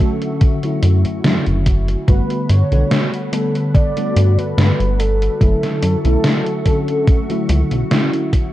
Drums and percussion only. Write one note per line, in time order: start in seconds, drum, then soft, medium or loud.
0.00 kick medium
0.22 closed hi-hat soft
0.41 kick loud
0.41 closed hi-hat medium
0.63 closed hi-hat soft
0.83 closed hi-hat medium
1.05 closed hi-hat soft
1.24 snare loud
1.24 closed hi-hat medium
1.46 closed hi-hat soft
1.66 kick medium
1.66 closed hi-hat medium
1.88 closed hi-hat soft
2.08 kick loud
2.08 closed hi-hat medium
2.30 closed hi-hat soft
2.49 closed hi-hat medium
2.72 closed hi-hat soft
2.91 snare loud
2.91 closed hi-hat medium
3.14 closed hi-hat soft
3.33 closed hi-hat medium
3.55 closed hi-hat soft
3.74 kick loud
3.74 closed hi-hat medium
3.97 closed hi-hat soft
4.16 closed hi-hat medium
4.39 closed hi-hat soft
4.58 snare loud
4.58 closed hi-hat medium
4.80 closed hi-hat soft
5.00 closed hi-hat medium
5.22 closed hi-hat soft
5.41 kick loud
5.41 closed hi-hat medium
5.63 snare soft
5.63 closed hi-hat soft
5.83 closed hi-hat medium
6.05 closed hi-hat soft
6.24 snare loud
6.24 closed hi-hat medium
6.47 closed hi-hat soft
6.66 kick medium
6.66 closed hi-hat medium
6.88 closed hi-hat soft
7.08 kick loud
7.08 closed hi-hat medium
7.30 closed hi-hat soft
7.49 closed hi-hat medium
7.71 closed hi-hat soft
7.91 snare loud
7.91 closed hi-hat medium
8.13 closed hi-hat soft
8.33 kick medium
8.33 closed hi-hat medium